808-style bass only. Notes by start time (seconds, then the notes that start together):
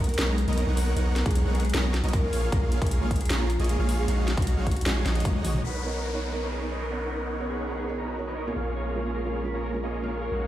Already playing: B1
0.19 B1
0.48 B1
0.67 B1
0.97 B1
1.26 B1
1.45 B1
1.74 B1
2.04 B1
2.23 A#1
2.52 A#1
2.82 A#1
3.01 A#1
3.30 A#1
3.60 A#1
3.79 A#1
4.08 A#1
4.38 A#1
4.57 A#1
4.86 A#1
5.06 A#1
5.35 A#1
5.64 B1
8.56 A#1
10.32 A#1